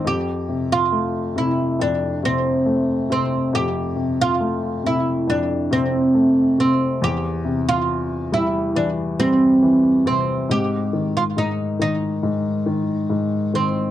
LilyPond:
<<
  \new Staff \with { instrumentName = "Oud" } { \time 4/4 \key f \major \tempo 4 = 69 g'8. f'8. e'8 d'8 c'4 c'8 | g'8. f'8. e'8 d'8 c'4 c'8 | g'8. f'8. e'8 d'8 c'4 c'8 | g'8. f'16 ees'8 ees'2 c'8 | }
  \new Staff \with { instrumentName = "Grand piano" } { \clef bass \time 4/4 \key f \major f,8 c8 a8 c8 f,8 c8 a8 c8 | f,8 c8 a8 c8 f,8 c8 a8 c8 | e,8 c4 g8 e8 g8 e8 c8 | aes,8 ees8 aes,8 ees8 aes,8 ees8 aes,8 ees8 | }
>>